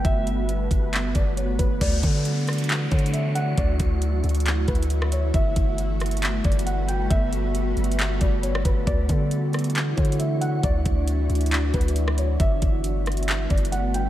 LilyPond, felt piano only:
\new Staff \with { instrumentName = "Felt piano" } { \time 4/4 \key d \major \tempo 4 = 136 e''2~ e''8 d''8 cis''8 b'8 | d''2~ d''8 cis''8 e''8 fis''8 | d''2~ d''8 b'4 cis''8 | e''2~ e''8 d''8 fis''8 g''8 |
e''2~ e''8 d''8 cis''8 b'8 | d''2~ d''8 cis''8 e''8 fis''8 | d''2~ d''8 b'4 cis''8 | e''2~ e''8 d''8 fis''8 g''8 | }